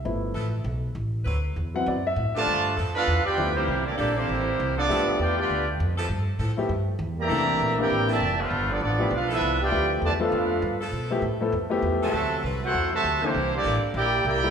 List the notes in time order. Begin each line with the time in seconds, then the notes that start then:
Already playing: E5
0.05 G1 F3 A3 B3 E4
0.34 A1 F3 B3 E4 A4
0.64 B1
0.95 A1
1.25 D2 F#3 C4 E4 B4
1.56 E2
1.74 F#3 B3 C4 E4 F#5
1.86 F#2 D5
2.07 E5
2.16 A2
2.35 G2 D3 F3 A3 B3 D4 F4 A4 B4 D5 A5
2.47 G2
2.77 F2 F3 B3 E4 A4
2.95 B3 D4 F4 A4 B4 F5
3.07 E2
3.24 B3 D4 F4 G4 B4 D5 G5, muted upright bass stroke
3.37 D2 F3 A3 B3 E4 G4
3.55 E3 G3 A#3 C4 E4 G4 C5
3.68 C2
3.85 G3 A#3 D4 E4 G4 D5
3.96 A#1 E3 G3 A#3 D4 E4 G4 A4 D5
4.14 E3 G3 A#3 C4 E4 G4 C5
4.29 A1
4.60 C2
4.76 F3 B3 D4 F4 A4 D5
4.88 G2 F3 A3 B3 E4 F4 G4 A4 E5
5.08 muted upright bass stroke
5.18 E2 B3 D4 F4 G4 B4 D5 G5
5.37 B3 D4 F4 G4 B4 D5 G5
5.50 D2
5.80 F2
5.98 F3 B3 E4 A4
6.09 G2
6.39 A2 F3 B3 E4 A4
6.57 F3 A3 B3 E4 G4
6.69 G2
6.99 E2
7.18 E3 G3 A#3 G4 D5 E5 A#5
7.29 C2 E3 A3 A#3 C4 D4 A4
7.59 A#1
7.78 E3 A#3 C4 D4 E4 G4 A#4 D5 G5
7.90 A1
8.09 A#2 E3 A3 A#3 D4 E4 G4 D5 E5 A5
8.20 F1
8.40 D3 F3 A3 B3 D4 F4 B4
8.50 G1
8.69 F3 B3 D4 F4 A4 D5
8.81 A1 F3 B3 D4 F4 A4 D5
8.99 F3 A3 B3 E4 G4
9.11 B1 B3 D4 F4 A4 B4 F5
9.29 F3 B3 E4 A4 B4
9.33 D4 E5
9.41 C2
9.60 B3 D4 F4 G4 B4 D5 G5
9.71 D2 F3 A3 B3 E4 G4
10.01 E2 D3 F3 A3 F4 B4 D5 A5
10.20 F3 A3 B3 D4 F4 A4 B4 F5
10.24 A4
10.32 F2
10.62 G2
10.81 F3 B3 E4 A4
10.93 B2
11.10 F3 A3 B3 E4 G4
11.22 A2
11.41 F3 A3 B3 E4 A4
11.52 F2
11.70 F3 A3 B3 E4 G4
11.82 E2
12.02 C3 F#3 A3 C4 E4 F#4 A4 C5 E5 A5
12.13 D2
12.43 C2 F#3 C4 E4 B4
12.63 A3 C4 E4 F#4 A4 C5 F#5
12.74 E2
12.92 C3 F#3 A3 F#4 C5 E5 A5
13.04 D2
13.22 E3 G3 A#3 C4 D4 E4 G4 A4 C5
13.35 C2
13.54 G3 A#3 D4 E4 G4 D5
13.64 A1 E3 A#3 D4 A4
13.94 A#1 A#3 E4 G4 A#4 D5 G5
14.25 C2 A#3 E4 G4 A#4 D5 G5
14.43 G3 B3 E4 F4 A4